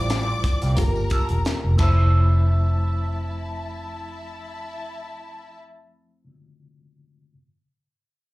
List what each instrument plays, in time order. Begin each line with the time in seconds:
Already playing: fingered electric bass A1, reed electric piano G3 E4 F4 C5, string section D5 D6
0.10 clean electric guitar G3 C4 F4, snare, closed hi-hat, tambourine
0.44 muted clean electric guitar stroke, muted fingered electric bass stroke, kick, closed hi-hat, tambourine
0.62 fingered electric bass C2, clean electric guitar G3 C4 F4, closed hi-hat, tambourine
0.76 fingered electric bass G1, reed electric piano A#3 F4 G4 A4, string section A#4 A#5, muted clean electric guitar stroke, kick, closed hi-hat, tambourine
0.86 reed electric piano A#4
0.95 tambourine
1.10 clean electric guitar A#3 F4 A4, muted fingered electric bass stroke, kick, closed hi-hat, tambourine
1.29 fingered electric bass E1, muted clean electric guitar stroke, closed hi-hat
1.45 snare, closed hi-hat, tambourine
1.63 fingered electric bass F1, muted clean electric guitar stroke
1.76 fingered electric bass F1, reed electric piano A3 E4, clean electric guitar C4, string section E4 E5 A5, kick, crash, tambourine
1.80 reed electric piano F3 C5, clean electric guitar E4 A4